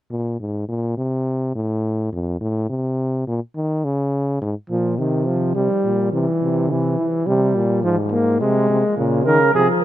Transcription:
0.10 bass trombone A#2
0.40 bass trombone G#2
0.68 bass trombone A#2
0.97 bass trombone C3
1.55 bass trombone A2
2.13 bass trombone F2
2.41 bass trombone A2
2.69 bass trombone C3
3.27 bass trombone A#2
3.56 bass trombone D#3
3.85 bass trombone C#3
4.42 bass trombone G#2
4.70 bass trombone A#2, trombone F3
4.98 bass trombone C3, trombone D#3
5.27 trombone F3
5.55 bass trombone C3, trombone G3
5.84 bass trombone A#2
6.12 bass trombone C3, trombone E3
6.42 bass trombone C3
6.70 trombone C3, bass trombone E3
6.98 trombone E3
7.27 bass trombone C3, trombone G3
7.55 bass trombone A#2
7.83 bass trombone G#2, trombone F3
8.12 trombone A#3
8.41 bass trombone C3, trombone G#3
8.70 bass trombone C3
8.98 bass trombone A#2, trombone C#3
9.26 bass trombone C#3, trombone D#3, flugelhorn A#4
9.55 bass trombone C3, trombone F3, flugelhorn G#4

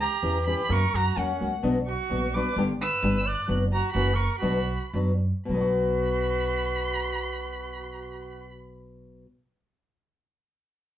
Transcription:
0.00 trumpet G4, violin A#5
0.22 upright bass E2, nylon-string guitar E3 C#4 E4 G4
0.47 nylon-string guitar E3 C#4 E4 G4, trumpet G4, violin B5
0.69 nylon-string guitar F#2 C#3 F#3 A#3 C#4 F#4, upright bass F#2, trumpet A#4, violin C#6
0.94 upright bass F#2, trumpet F#4, violin A#5
1.16 upright bass E2, nylon-string guitar F#3 A#3 C#4 F#4, trumpet C#4, violin F#5
1.40 upright bass C#2, nylon-string guitar F#3 A#3 C#4 F#4
1.63 upright bass B1, nylon-string guitar B2 F#3 B3 D4 F#4
1.86 trumpet F#4, violin C#6
2.10 upright bass A#1, nylon-string guitar F#3 B3 D4 F#4
2.34 nylon-string guitar F#3 B3 D4 F#4, trumpet B4, violin D6
2.56 upright bass G1, nylon-string guitar G2 D3 G3 B3 D4 G4
2.81 trumpet B4, violin E6
3.02 upright bass G1, nylon-string guitar G3 B3 D4 G4
3.26 trumpet D5, violin F#6
3.48 upright bass F#1, nylon-string guitar F#3 B3 D4 F#4
3.73 trumpet F#4, violin A#5
3.92 upright bass F#1, nylon-string guitar E3 C#4, trumpet F#4, violin B5
3.96 nylon-string guitar A#3 F#4
4.14 trumpet A#4, violin C#6
4.38 nylon-string guitar B2 F#3, trumpet F#4, violin B5
4.42 upright bass B1, nylon-string guitar B3 D4 F#4
4.94 upright bass F#2, nylon-string guitar F#3 B3 D4 F#4
5.45 upright bass B1, nylon-string guitar B2, trumpet F#4, violin B5
5.50 nylon-string guitar F#3 B3
5.57 nylon-string guitar D4 F#4

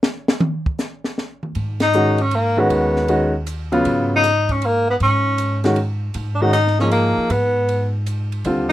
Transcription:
0.03 snare
0.28 snare
0.40 mid tom
0.66 kick
0.79 snare, hi-hat pedal
1.04 snare
1.18 snare
1.43 mid tom
1.55 upright bass G#2, ride
1.80 tenor saxophone D#4, snare, ride
1.93 grand piano D#3 G#3 C#4 F#4, hi-hat pedal
2.18 tenor saxophone C#4, ride
2.31 tenor saxophone A#3, ride
2.57 grand piano D#3 G#3 C#4 F#4, tenor saxophone B3
2.70 upright bass D#2, ride
2.96 snare
3.08 grand piano D#3 G#3 C#4 F#4, ride
3.47 hi-hat pedal, ride
3.72 grand piano C#3 F#3 B3 F4, ride
3.85 upright bass G#2, ride
4.16 tenor saxophone D#4
4.24 snare, hi-hat pedal, ride
4.49 tenor saxophone C#4, kick, ride
4.62 tenor saxophone A#3, ride
4.90 tenor saxophone B3
5.00 upright bass G#2, tenor saxophone C#4, ride
5.38 hi-hat pedal, ride
5.64 grand piano D#3 G#3 C#4 F#4, snare, ride
5.76 ride
6.14 upright bass G#2, ride
6.35 tenor saxophone D4
6.41 grand piano D#3 G#3 C#4 F#4, tenor saxophone D#4
6.53 tenor saxophone D#4, hi-hat pedal, ride
6.67 snare
6.79 grand piano F3 A#3 D#4 G#4, tenor saxophone C#4, snare
6.91 tenor saxophone A#3, ride
7.18 muted upright bass stroke
7.30 upright bass G#2, tenor saxophone B3, ride
7.69 ride
8.06 hi-hat pedal, ride
8.32 ride
8.45 upright bass D#2, grand piano D3 G3 C4 F4, ride

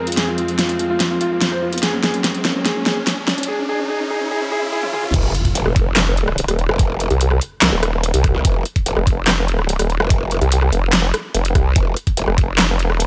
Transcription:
Already playing: string section F2 F3 G#3 C4, riser
0.07 grand piano F4, closed hi-hat
0.12 closed hi-hat
0.17 grand piano G#4, snare, closed hi-hat
0.28 grand piano F4
0.38 grand piano F4, closed hi-hat
0.48 closed hi-hat
0.59 grand piano F4, snare, closed hi-hat
0.69 grand piano F4, closed hi-hat
0.79 grand piano F4, closed hi-hat
0.90 grand piano F4
1.00 grand piano F4, snare, closed hi-hat
1.10 grand piano F4
1.21 grand piano F4, closed hi-hat
1.31 grand piano F4
1.41 grand piano F4, snare, closed hi-hat
1.52 grand piano C5
1.62 grand piano F4
1.73 grand piano F4, closed hi-hat
1.78 closed hi-hat
1.83 string section F#2 F#3 G#3 A#3, grand piano G#4, snare, closed hi-hat
1.93 grand piano C#4
2.04 grand piano G#4, snare, closed hi-hat
2.14 grand piano C#4, closed hi-hat
2.24 grand piano C#4, snare, closed hi-hat
2.35 closed hi-hat
2.45 grand piano C#4, snare, closed hi-hat
2.55 grand piano C#4
2.66 grand piano G#4, snare, closed hi-hat
2.76 grand piano C#4
2.86 grand piano G#4, snare, closed hi-hat
2.97 grand piano C#4
3.07 grand piano C#4, snare, closed hi-hat
3.28 grand piano C#4, snare
3.38 grand piano C#4, closed hi-hat
3.43 closed hi-hat
3.48 grand piano G#4
3.59 grand piano C#4
3.69 grand piano G#4
3.79 grand piano C#4
3.90 grand piano G#4
4.00 grand piano C#4
4.10 grand piano G#4
4.21 grand piano C#4
4.31 grand piano G#4
4.41 grand piano C#4
4.52 grand piano G#4
4.62 grand piano C#4
4.72 grand piano G#4
4.83 grand piano C#4, high tom
4.93 grand piano G#4, mid tom
5.04 grand piano C#4, mid tom
5.14 wobble bass F1, kick, closed hi-hat, crash, impact
5.35 closed hi-hat
5.45 kick, closed hi-hat
5.55 wobble bass F1, closed hi-hat
5.66 wobble bass F1, cross-stick
5.76 kick, closed hi-hat
5.97 snare, clap, closed hi-hat
6.17 closed hi-hat
6.28 cross-stick
6.38 closed hi-hat
6.48 wobble bass D#1, cross-stick, closed hi-hat
6.59 closed hi-hat
6.69 wobble bass F1, cross-stick
6.79 kick, closed hi-hat
7.00 closed hi-hat
7.10 wobble bass C2, closed hi-hat
7.21 closed hi-hat
7.31 cross-stick
7.41 closed hi-hat
7.62 wobble bass C2, snare, clap, closed hi-hat
7.73 wobble bass D#1
7.83 cross-stick, closed hi-hat
8.03 closed hi-hat
8.14 wobble bass C2, closed hi-hat
8.24 kick, cross-stick, closed hi-hat
8.35 wobble bass C2
8.45 wobble bass F1, kick, closed hi-hat
8.65 closed hi-hat
8.76 kick, closed hi-hat
8.86 wobble bass F1, closed hi-hat
8.97 wobble bass F1, cross-stick
9.07 kick, closed hi-hat
9.28 snare, clap, closed hi-hat
9.48 closed hi-hat
9.59 cross-stick
9.69 closed hi-hat
9.79 wobble bass D#1, cross-stick, closed hi-hat
9.90 closed hi-hat
10.00 wobble bass F1, cross-stick
10.10 kick, closed hi-hat
10.31 closed hi-hat
10.41 wobble bass C2, closed hi-hat
10.52 closed hi-hat
10.62 cross-stick
10.72 wobble bass F1, closed hi-hat
10.93 snare, clap, closed hi-hat
11.14 cross-stick, closed hi-hat
11.35 wobble bass F1, closed hi-hat
11.45 closed hi-hat
11.55 wobble bass C2, kick, cross-stick, closed hi-hat
11.76 wobble bass F1, kick, closed hi-hat
11.96 closed hi-hat
12.07 kick, closed hi-hat
12.17 wobble bass F1, closed hi-hat
12.28 wobble bass F1, cross-stick
12.38 kick, closed hi-hat
12.59 snare, clap, closed hi-hat
12.79 closed hi-hat
12.85 wobble bass E1
12.90 cross-stick
13.00 closed hi-hat

